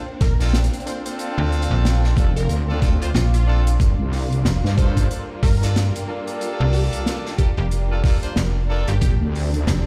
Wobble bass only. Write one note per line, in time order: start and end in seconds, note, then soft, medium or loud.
2.17 2.47 F1 loud
2.49 3.12 D2 loud
3.80 3.96 G1 loud
3.99 4.43 C2 loud
4.64 5.08 G2 loud
9.02 9.18 A#1 loud
9.21 9.65 D2 loud